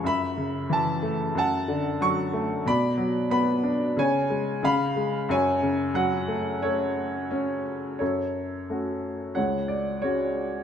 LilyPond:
<<
  \new Staff \with { instrumentName = "Upright piano" } { \time 4/4 \key fis \minor \tempo 4 = 90 << { b''4 a''4 a''4 cis'''4 | b''4 b''4 gis''4 b''4 | gis''4 fis''4 cis''4. r8 | cis''2 fis''8 d''8 cis''4 | } \\ { e''2 fis''2 | d''2 cis''4 eis''4 | cis''2 a'2 | a'2 cis''2 | } >> }
  \new Staff \with { instrumentName = "Upright piano" } { \clef bass \time 4/4 \key fis \minor fis,8 cis8 e8 a8 fis,8 d8 fis8 a8 | b,8 fis8 b8 d'8 cis8 gis8 cis8 gis8 | fis,8 cis8 fis8 a4. cis'4 | fis,4 <a cis' fis'>4 cis,4 <gis cis' fis'>4 | }
>>